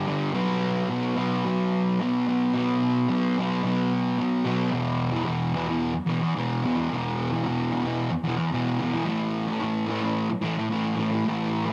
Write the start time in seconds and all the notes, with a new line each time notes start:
0.07 G2 D3 G3
0.34 B2 F#3 B3
0.89 B2 F#3 B3
1.16 B2 F#3 B3
1.45 B2 F#3 B3
2.00 B2 F#3 B3
2.27 B2 F#3 B3
2.54 B2 F#3 B3
3.09 B2 F#3 B3
3.37 B2 F#3 B3
3.63 B2 F#3 B3
4.19 B2 F#3 B3
4.45 B2 F#3 B3
4.71 E2 B2 E3
5.12 E3
5.17 B2
5.23 E2 B2
5.27 E3
5.52 E2 B2
5.57 E3
5.67 B2 E3
5.95 muted distorted electric guitar stroke
6.06 E2 B2
6.10 E3
6.21 muted distorted electric guitar stroke
6.35 E2 B2 E3
6.63 E2 B2 E3
6.76 B2 E3
6.90 E2 B2
6.94 E3
7.32 B2 E3
7.43 E2 B2
7.48 E3
7.71 E2 B2 E3
7.82 E3
7.86 B2
8.11 muted distorted electric guitar stroke
8.24 E2 B2
8.28 E3
8.37 muted distorted electric guitar stroke
8.51 E2 B2 E3
8.78 E2 B2 E3
8.93 B2 E3
9.05 A2 E3
9.09 A3
9.47 E3 A3
9.60 A2 E3
9.64 A3
9.87 A2 E3 A3
10.01 E3 A3
10.30 muted distorted electric guitar stroke
10.41 A2 E3 A3
10.58 muted distorted electric guitar stroke
10.70 A2 E3 A3
10.96 A2 E3
11.00 A3
11.11 E3 A3
11.25 A2 E3 A3
11.65 A3
11.69 E3